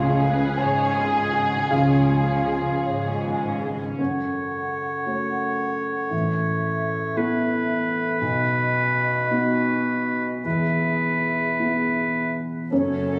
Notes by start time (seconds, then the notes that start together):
Already playing: C#2 C#3 F3 G#3 A3 F4 G#4 F5
0.05 C#4
0.21 G#3 G#4 B4
0.41 C#4
0.57 G#1 G#2 G#3 G#4 C#5 G#5
0.79 C#4
0.95 G#3 F4 G#5
1.15 C#4
1.33 G#3 F#4 G#4
1.53 C#4
1.70 C#2 C#3 F3 G#3 F4 G#4 F5
1.89 C#4
2.09 G#3
2.28 C#4
2.48 G#3 G#4
2.68 C#4
2.85 G#1 G#2 G#3 C#5
3.05 C#4
3.24 G#3 G#5
3.44 C#4
3.61 G#3 G#4
3.81 C#4
3.98 F#2 A4 C#5 F#5
5.06 A3 F#4 C#5
6.11 A1 E5
7.16 B3 E4 A4 B4
8.21 B1 F#4 D#5
9.30 B3 D#4 F#4
10.44 E2 G#4 B4 E5
11.59 B3 E4 G#4
12.71 F#1 F#2 C#4 A4 C#5